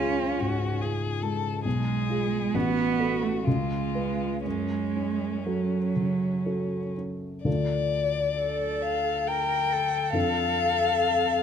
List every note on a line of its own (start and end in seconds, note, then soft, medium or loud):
0.00 1.61 C#2 soft
0.00 0.24 G#3 soft
0.00 0.81 C#4 medium
0.00 0.36 F4 soft
0.00 0.42 F4 soft
0.00 0.37 G#4 soft
0.40 1.06 G#2 soft
0.40 0.83 F#4 medium
0.81 1.18 F4 soft
0.81 1.24 G#4 soft
0.81 1.19 G#4 soft
1.22 1.65 G#3 soft
1.22 1.64 A4 medium
1.64 2.52 B1 soft
1.64 2.56 G#3 medium
1.64 2.56 G#4 medium
2.09 2.50 F4 soft
2.09 2.51 G#4 soft
2.54 3.43 A1 soft
2.54 3.24 B3 medium
2.54 3.46 F#4 soft
3.00 3.42 F#4 soft
3.00 3.42 A4 soft
3.23 3.45 A3 medium
3.44 4.43 C#2 soft
3.44 4.43 G#3 medium
3.44 4.44 F4 soft
3.95 4.41 F4 soft
3.95 4.41 B4 soft
4.45 7.43 F#2 soft
4.45 5.46 G#3 medium
4.45 6.94 C#4 soft
4.96 5.76 C#4 soft
5.44 6.97 F#3 soft
5.44 5.92 F#4 soft
5.44 5.92 A4 soft
5.96 6.77 C#3 soft
6.46 6.93 F#4 soft
6.46 6.93 A4 soft
6.98 7.47 C#4 soft
7.44 10.10 D2 soft
7.44 10.10 D4 soft
7.44 10.11 F4 soft
7.44 10.11 A4 soft
7.44 8.84 D5 medium
8.37 9.29 A4 soft
8.82 9.29 F5 medium
9.27 9.73 A#4 soft
9.27 10.13 G5 medium
9.72 11.43 A4 medium
10.13 11.43 F2 soft
10.13 11.43 D4 soft
10.13 11.43 F4 soft
10.13 11.43 A4 soft
10.13 11.43 F5 medium